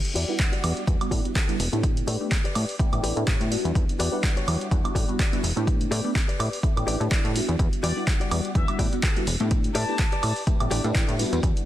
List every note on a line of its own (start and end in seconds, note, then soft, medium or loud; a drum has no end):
0.05 closed hi-hat medium
0.15 0.25 E2 loud
0.15 0.34 F#4 loud
0.15 0.34 G4 loud
0.15 0.34 D5 loud
0.15 open hi-hat loud
0.28 0.84 G3 medium
0.28 0.85 B3 medium
0.28 0.85 D4 medium
0.28 0.85 E4 medium
0.28 0.85 F#5 loud
0.39 kick loud
0.39 clap loud
0.39 closed hi-hat medium
0.52 0.82 F#4 medium
0.52 0.82 G4 medium
0.52 0.82 D5 loud
0.52 closed hi-hat medium
0.64 0.73 E2 loud
0.64 open hi-hat loud
0.64 high woodblock medium
0.77 closed hi-hat soft
0.87 0.97 E2 loud
0.87 0.97 G3 medium
0.87 0.98 B3 medium
0.87 0.98 E4 medium
0.87 0.98 F#4 medium
0.87 kick loud
0.87 closed hi-hat medium
1.00 1.21 G3 medium
1.00 1.22 B3 medium
1.00 1.22 D4 medium
1.00 1.22 E4 medium
1.00 1.22 F#4 loud
1.00 closed hi-hat medium
1.00 high woodblock medium
1.11 1.21 A2 medium
1.11 1.25 F#4 loud
1.11 1.25 G4 medium
1.11 1.25 D5 loud
1.11 kick medium
1.11 open hi-hat loud
1.24 1.33 G3 medium
1.24 1.34 B3 medium
1.24 1.34 D4 medium
1.24 1.34 E4 medium
1.24 1.34 F#4 medium
1.24 closed hi-hat soft
1.35 1.54 F#4 medium
1.35 1.54 G4 medium
1.35 1.54 A4 loud
1.35 kick loud
1.35 clap loud
1.35 closed hi-hat medium
1.48 1.57 G3 loud
1.48 1.57 B3 medium
1.48 1.58 D4 medium
1.48 1.58 E4 medium
1.48 1.58 F#4 loud
1.48 closed hi-hat soft
1.60 1.69 E1 medium
1.60 open hi-hat loud
1.72 2.02 A2 medium
1.72 2.17 A3 medium
1.72 2.17 B3 medium
1.72 2.17 D4 medium
1.72 2.18 E4 medium
1.72 2.18 G4 loud
1.72 muted clean electric guitar stroke soft
1.72 closed hi-hat soft
1.83 kick loud
1.83 closed hi-hat medium
1.97 closed hi-hat medium
2.07 2.17 A2 loud
2.07 2.26 G4 loud
2.07 2.26 B4 loud
2.07 2.26 D5 loud
2.07 open hi-hat loud
2.20 2.35 A3 medium
2.20 2.36 B3 medium
2.20 2.36 D4 medium
2.20 2.36 E4 medium
2.20 2.36 G4 medium
2.20 tambourine medium
2.31 kick loud
2.31 clap loud
2.31 closed hi-hat medium
2.44 2.74 G4 medium
2.44 2.74 B4 medium
2.44 2.74 D5 loud
2.44 closed hi-hat medium
2.55 2.65 A2 loud
2.55 open hi-hat loud
2.55 high woodblock medium
2.69 open hi-hat medium
2.79 2.89 A3 medium
2.79 2.90 B3 medium
2.79 2.90 D4 medium
2.79 2.90 E4 medium
2.79 2.90 G4 loud
2.79 kick loud
2.79 closed hi-hat medium
2.92 3.00 A1 medium
2.92 3.01 A3 loud
2.92 3.01 B3 medium
2.92 3.01 D4 medium
2.92 3.01 E4 medium
2.92 3.01 G4 loud
2.92 closed hi-hat medium
2.92 high woodblock medium
3.03 3.13 A1 loud
3.03 3.13 A3 medium
3.03 3.13 B3 medium
3.03 3.13 D4 medium
3.03 3.13 E4 medium
3.03 3.17 G4 loud
3.03 3.14 G4 loud
3.03 3.17 B4 loud
3.03 3.17 D5 loud
3.03 open hi-hat loud
3.03 tambourine medium
3.16 3.24 A2 loud
3.16 3.48 A3 loud
3.16 3.48 B3 medium
3.16 3.49 D4 medium
3.16 3.49 E4 medium
3.16 3.49 G4 loud
3.16 closed hi-hat soft
3.27 3.37 A1 medium
3.27 3.46 G4 loud
3.27 3.46 B4 medium
3.27 3.46 C#5 loud
3.27 kick loud
3.27 clap loud
3.27 closed hi-hat medium
3.41 3.57 A2 loud
3.41 closed hi-hat soft
3.50 4.09 G3 medium
3.50 4.09 B3 medium
3.50 4.09 D4 medium
3.50 4.10 E4 medium
3.50 4.10 F#4 medium
3.50 open hi-hat loud
3.64 3.72 E2 loud
3.64 muted clean electric guitar stroke soft
3.64 closed hi-hat soft
3.75 3.85 E2 loud
3.75 kick loud
3.75 closed hi-hat medium
3.89 closed hi-hat medium
3.99 4.09 E2 loud
3.99 4.18 F#4 loud
3.99 4.18 G4 loud
3.99 4.18 D5 loud
3.99 open hi-hat loud
3.99 tambourine medium
4.11 4.68 G3 medium
4.11 4.69 B3 medium
4.11 4.69 D4 medium
4.11 4.69 E4 medium
4.11 4.69 F#5 medium
4.11 tambourine medium
4.23 kick loud
4.23 clap loud
4.23 closed hi-hat medium
4.36 4.66 F#4 medium
4.36 4.66 G4 medium
4.36 4.66 C#5 loud
4.36 closed hi-hat soft
4.47 4.57 E2 loud
4.47 open hi-hat loud
4.47 tambourine loud
4.47 high woodblock medium
4.61 closed hi-hat soft
4.71 4.81 E2 medium
4.71 4.81 G3 medium
4.71 4.81 B3 medium
4.71 4.81 D4 medium
4.71 4.81 E4 medium
4.71 4.82 F#4 medium
4.71 kick loud
4.71 closed hi-hat medium
4.84 5.05 G3 medium
4.84 5.05 B3 medium
4.84 5.05 D4 medium
4.84 5.05 E4 medium
4.84 5.06 F#4 loud
4.84 closed hi-hat soft
4.84 high woodblock medium
4.95 5.05 A2 medium
4.95 5.08 F#4 loud
4.95 5.09 G4 loud
4.95 5.09 D5 loud
4.95 kick medium
4.95 open hi-hat loud
4.95 tambourine medium
5.08 5.17 G3 medium
5.08 5.17 B3 medium
5.08 5.18 D4 medium
5.08 5.18 E4 medium
5.08 5.18 F#4 medium
5.08 closed hi-hat soft
5.08 tambourine medium
5.19 5.38 F#4 medium
5.19 5.38 G4 medium
5.19 5.38 D5 loud
5.19 kick loud
5.19 clap loud
5.19 closed hi-hat medium
5.32 5.41 G3 loud
5.32 5.41 B3 medium
5.32 5.41 D4 medium
5.32 5.42 E4 medium
5.32 5.42 F#4 loud
5.32 closed hi-hat soft
5.43 5.53 E1 loud
5.43 open hi-hat loud
5.43 tambourine loud
5.56 5.86 A2 medium
5.56 6.01 A3 medium
5.56 6.01 B3 medium
5.56 6.01 D4 medium
5.56 6.02 E4 medium
5.56 6.02 G4 loud
5.56 muted clean electric guitar stroke soft
5.56 closed hi-hat soft
5.56 tambourine medium
5.67 kick loud
5.67 closed hi-hat medium
5.81 closed hi-hat medium
5.91 6.01 A2 loud
5.91 6.10 G4 loud
5.91 6.10 B4 medium
5.91 6.10 D5 loud
5.91 open hi-hat loud
5.91 tambourine loud
6.04 6.19 A3 medium
6.04 6.20 B3 medium
6.04 6.20 D4 medium
6.04 6.20 E4 medium
6.04 6.20 G4 loud
6.04 tambourine soft
6.15 kick loud
6.15 clap loud
6.15 closed hi-hat medium
6.28 6.58 G4 loud
6.28 6.58 B4 medium
6.28 6.58 D5 loud
6.28 closed hi-hat soft
6.39 6.49 A2 loud
6.39 open hi-hat loud
6.39 tambourine medium
6.39 high woodblock medium
6.52 open hi-hat medium
6.52 tambourine medium
6.63 6.73 A3 medium
6.63 6.73 B3 medium
6.63 6.73 D4 medium
6.63 6.74 E4 medium
6.63 6.74 G4 medium
6.63 kick loud
6.63 closed hi-hat medium
6.76 6.84 A1 medium
6.76 6.85 A3 loud
6.76 6.85 B3 medium
6.76 6.85 D4 medium
6.76 6.85 E4 medium
6.76 6.86 G4 loud
6.76 closed hi-hat soft
6.76 high woodblock medium
6.87 6.97 A1 loud
6.87 6.97 A3 medium
6.87 6.97 B3 medium
6.87 6.98 D4 medium
6.87 6.98 E4 medium
6.87 7.00 G4 loud
6.87 6.98 G4 medium
6.87 7.01 B4 loud
6.87 7.01 D5 loud
6.87 open hi-hat loud
6.87 tambourine medium
7.00 7.08 A2 loud
7.00 7.33 A3 loud
7.00 7.33 B3 medium
7.00 7.33 D4 medium
7.00 7.33 E4 medium
7.00 7.33 G4 loud
7.00 closed hi-hat soft
7.00 tambourine medium
7.11 7.21 A1 medium
7.11 7.30 G4 medium
7.11 7.30 B4 medium
7.11 7.30 D5 loud
7.11 kick loud
7.11 clap loud
7.11 closed hi-hat medium
7.25 7.41 A2 loud
7.25 closed hi-hat soft
7.35 7.93 G3 medium
7.35 7.93 B3 medium
7.35 7.94 D4 medium
7.35 7.94 E4 medium
7.35 7.94 F#4 medium
7.35 open hi-hat loud
7.35 tambourine loud
7.48 7.56 E2 medium
7.48 muted clean electric guitar stroke soft
7.48 closed hi-hat soft
7.48 tambourine medium
7.59 7.69 E2 loud
7.59 kick loud
7.59 closed hi-hat medium
7.73 closed hi-hat soft
7.83 7.93 E2 loud
7.83 8.02 F#4 loud
7.83 8.02 G4 medium
7.83 8.04 D5 medium
7.83 8.02 D5 loud
7.83 open hi-hat loud
7.83 tambourine medium
7.96 8.53 G3 medium
7.96 8.53 B3 medium
7.96 8.53 D4 medium
7.96 8.53 E4 medium
7.96 8.53 F#5 loud
7.96 tambourine medium
8.07 kick loud
8.07 clap loud
8.07 closed hi-hat medium
8.20 8.50 F#4 medium
8.20 8.50 G4 medium
8.20 8.50 D5 loud
8.20 closed hi-hat soft
8.31 8.41 E2 loud
8.31 open hi-hat loud
8.31 tambourine medium
8.31 high woodblock medium
8.44 closed hi-hat soft
8.44 tambourine medium
8.55 8.65 E2 medium
8.55 8.65 G3 medium
8.55 8.65 B3 medium
8.55 8.66 D4 medium
8.55 8.66 E4 medium
8.55 8.66 F#4 medium
8.55 8.75 E5 loud
8.55 kick loud
8.55 closed hi-hat medium
8.68 8.89 G3 medium
8.68 8.89 B3 medium
8.68 8.90 D4 medium
8.68 8.90 E4 medium
8.68 8.90 F#4 loud
8.68 closed hi-hat soft
8.68 high woodblock medium
8.79 8.89 A2 medium
8.79 8.92 F#4 loud
8.79 8.93 G4 loud
8.79 8.93 D5 loud
8.79 kick medium
8.79 open hi-hat loud
8.79 tambourine medium
8.92 9.01 G3 medium
8.92 9.02 B3 medium
8.92 9.02 D4 medium
8.92 9.02 E4 medium
8.92 9.02 F#4 medium
8.92 closed hi-hat soft
8.92 tambourine soft
9.03 9.22 F#4 medium
9.03 9.22 G4 medium
9.03 9.22 A4 loud
9.03 kick loud
9.03 clap loud
9.03 closed hi-hat medium
9.16 9.25 G3 loud
9.16 9.26 B3 medium
9.16 9.26 D4 medium
9.16 9.26 E4 medium
9.16 9.26 F#4 loud
9.16 closed hi-hat soft
9.27 9.37 E1 medium
9.27 open hi-hat loud
9.27 tambourine medium
9.40 9.70 A2 medium
9.40 9.85 A3 loud
9.40 9.85 B3 medium
9.40 9.85 D4 medium
9.40 9.85 E4 medium
9.40 9.86 G4 loud
9.40 muted clean electric guitar stroke soft
9.40 closed hi-hat soft
9.40 tambourine soft
9.51 kick loud
9.51 closed hi-hat medium
9.64 closed hi-hat medium
9.75 9.85 A2 loud
9.75 9.94 G4 loud
9.75 9.94 B4 loud
9.75 9.94 D5 loud
9.75 10.43 A5 loud
9.75 open hi-hat loud
9.75 tambourine medium
9.88 10.03 A3 medium
9.88 10.04 B3 medium
9.88 10.04 D4 medium
9.88 10.04 E4 medium
9.88 10.04 G4 medium
9.88 tambourine medium
9.99 kick loud
9.99 clap loud
9.99 closed hi-hat medium
10.12 10.42 G4 medium
10.12 10.42 B4 medium
10.12 10.42 D5 loud
10.12 closed hi-hat medium
10.23 10.33 A2 loud
10.23 open hi-hat loud
10.23 tambourine loud
10.23 high woodblock medium
10.36 open hi-hat medium
10.36 tambourine medium
10.47 10.57 A3 medium
10.47 10.57 B3 medium
10.47 10.57 D4 medium
10.47 10.58 E4 medium
10.47 10.58 G4 loud
10.47 kick loud
10.47 closed hi-hat medium
10.47 tambourine soft
10.60 10.68 A1 medium
10.60 10.69 A3 loud
10.60 10.69 B3 medium
10.60 10.69 D4 medium
10.60 10.69 E4 medium
10.60 10.69 G4 loud
10.60 closed hi-hat medium
10.60 high woodblock medium
10.71 10.81 A1 loud
10.71 10.81 A3 medium
10.71 10.81 B3 medium
10.71 10.81 D4 medium
10.71 10.81 E4 medium
10.71 10.84 G4 loud
10.71 10.82 G4 loud
10.71 10.84 B4 loud
10.71 10.85 D5 loud
10.71 open hi-hat loud
10.71 tambourine medium
10.84 10.92 A2 medium
10.84 11.17 A3 loud
10.84 11.17 B3 medium
10.84 11.17 D4 medium
10.84 11.17 E4 medium
10.84 11.17 G4 loud
10.84 closed hi-hat soft
10.84 tambourine soft
10.95 11.05 A1 medium
10.95 11.14 G4 medium
10.95 11.14 B4 medium
10.95 11.14 D5 loud
10.95 kick loud
10.95 clap loud
10.95 closed hi-hat medium
11.08 11.25 A2 loud
11.08 closed hi-hat medium
11.19 11.65 G3 medium
11.19 11.65 B3 medium
11.19 11.65 D4 medium
11.19 11.65 E4 medium
11.19 11.65 F#4 medium
11.19 open hi-hat loud
11.19 tambourine loud
11.32 11.40 E2 medium
11.32 muted clean electric guitar stroke soft
11.32 closed hi-hat soft
11.32 tambourine medium
11.43 11.52 E2 loud
11.43 kick loud
11.43 closed hi-hat medium
11.57 closed hi-hat medium